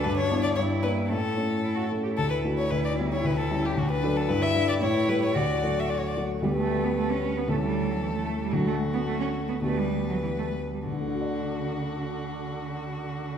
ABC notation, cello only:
X:1
M:2/4
L:1/16
Q:1/4=112
K:D
V:1 name="Cello"
D4 E4 | C4 E F2 G | E8- | E4 D4 |
E4 E4 | F6 z2 | G, A,2 B, A, C2 B, | A, G,2 F, E, A,2 G, |
F, A,2 B, A, C2 B, | A, G,2 F, E, A,2 G, | D,8- | D,8 |]